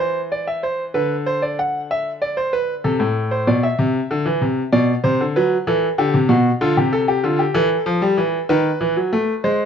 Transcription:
grand piano
Already playing: E3
0.00 C5
0.32 D5
0.48 E5
0.63 C5
0.94 D3 B4
1.26 C5
1.42 D5
1.59 F#5
1.91 E5
2.22 D5
2.37 C5
2.53 B4
2.84 C3 A4
3.00 A2
3.31 C5
3.47 B2 D5
3.63 E5
3.78 C3
4.11 D3
4.26 E3
4.41 C3
4.73 B2 D5
5.04 C3 C5
5.21 D3
5.36 F#3 B4
5.67 E3 A4
5.98 D3 G4
6.14 C3
6.29 B2 F#4
6.61 D3 F4
6.77 C3 G4
6.92 A4
7.08 G4
7.23 D3 F4
7.39 G4
7.54 E3 A4
7.86 F3
8.02 G3
8.18 E3
8.49 D#3 B4
8.81 E3
8.96 F#3
9.13 A3
9.44 G#3 C5

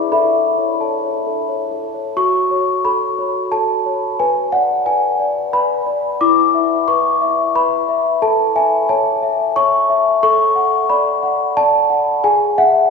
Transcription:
celesta
Already playing: E4 G#4 D5 B5
0.12 A4 E5 B5
0.35 A4
0.57 C#5
0.81 A4 C#5 A5
1.04 C#5
1.26 A4
1.49 C#5
1.71 A4
1.94 C#5
2.17 F#4 C#6
2.51 C#5
2.85 A4 B5
3.19 C#5
3.52 A4 A5
3.86 C#5
4.19 B4 G#5
4.52 D5 F#5
4.86 B4 G#5
5.20 D5
5.53 B4 B5
5.86 D5
6.21 E4 D6
6.54 E5
6.88 B4 C#6
7.21 E5
7.55 B4 B5
7.89 E5
8.22 A4 A5
8.55 E5 G#5
8.89 C#5 A5
9.23 E5
9.56 C#5 C#6
9.90 E5
10.23 A4 C#6
10.56 F#5
10.90 D5 B5
11.23 F#5
11.57 D5 A5
11.90 F#5
12.24 G#4 G#5
12.58 E5 F#5

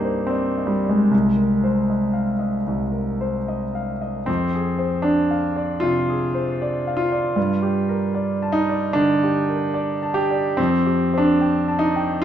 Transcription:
grand piano
Already playing: G2 A#3 C4 D4 D#4 G4 C5 D5 D#5
0.04 C5
0.27 C4 D5
0.57 D#5
0.67 G3
0.84 D5
0.89 G#3
1.11 C2
1.37 A#4
1.64 C5
1.90 D#5
2.13 F5
2.39 D#5
2.67 C2
2.92 A#4
3.21 C5
3.48 D#5
3.75 F5
4.01 D#5
4.26 F2 C4
4.54 G#4
4.79 C5
5.02 D4 D5
5.31 F5
5.56 D5
5.80 C3 F4
6.09 G#4
6.35 C5
6.62 D5
6.87 F5
6.97 F4
7.12 D5
7.36 G2
7.62 G4
7.89 A#4
8.15 D5
8.42 A5
8.52 D#4
8.69 D5
8.93 D3 D4
9.23 G4
9.49 A#4
9.74 D5
10.03 A5
10.14 G4
10.31 D5
10.57 F2 C4
10.86 G4
11.14 C5
11.18 D4
11.41 G5
11.68 A5
11.79 D#4
11.96 G5

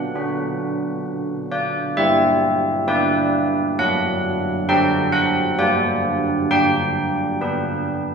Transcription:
church bells
Already playing: B3 D4 F#5
0.15 D4 F#4
1.52 D5
1.97 G3 E5
2.87 D4 B4 D5
3.79 F#3 F#5
4.69 D4 A4 G5
5.12 F#5
5.59 G3 D5
6.51 D4 G5
7.41 D4 B4

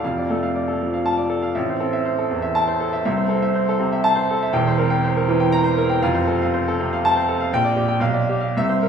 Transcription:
grand piano
0.03 F1 F2 F5
0.18 D5
0.30 A3 A4
0.43 F5
0.55 D5
0.68 A4
0.82 F3
0.94 F5
1.06 A5
1.18 D5
1.29 A4
1.42 F5
1.55 A1 E5
1.69 C5
1.80 C4 A4
1.93 E5
2.05 C5
2.19 A4
2.31 E2
2.42 E5
2.55 A5
2.68 C5
2.80 A4
2.93 E5
3.05 C2 E5
3.17 C5
3.29 C4 A4
3.42 E5
3.55 C5
3.69 A4
3.80 C3
3.92 E5
4.04 A5
4.15 C5
4.31 A4
4.42 E5
4.52 E1 E2 G5
4.67 C5
4.78 C4 A#4
4.90 G5
5.04 C5
5.17 A#4
5.28 E3
5.40 G5
5.52 A#5
5.64 C5
5.78 A#4
5.89 G5
6.02 F1 F2 F5
6.14 C5
6.27 C4 A4
6.42 F5
6.54 C5
6.68 A4
6.80 C3
6.93 F5
7.05 A5
7.16 C5
7.29 A4
7.40 F5
7.53 A#1 G5
7.64 D5
7.76 G4
7.88 G5
8.00 B1 F5
8.14 D5
8.29 G4
8.40 F5
8.57 C2 E5
8.69 C5
8.83 A#4

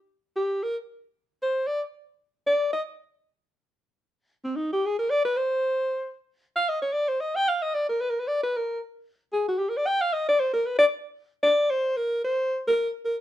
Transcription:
alto saxophone
0.36 G4
0.63 A#4
1.42 C5
1.67 D5
2.47 D5
2.73 D#5
4.44 C4
4.56 D#4
4.73 G4
4.86 G#4
4.99 A#4
5.10 D5
5.25 B4
5.37 C5
6.56 F5
6.69 D#5
6.82 C#5
6.93 D5
7.08 C5
7.21 D#5
7.36 G5
7.48 F5
7.62 D#5
7.74 D5
7.89 A#4
8.01 B4
8.10 A#4
8.19 B4
8.28 D5
8.43 B4
8.56 A#4
9.33 G#4
9.48 F#4
9.58 G4
9.69 A#4
9.77 D5
9.87 G5
10.01 F5
10.13 D#5
10.29 D5
10.40 C5
10.53 A#4
10.66 B4
10.79 D5
11.43 D5
11.70 C5
11.97 A#4
12.24 C5
12.68 A#4
13.05 A#4

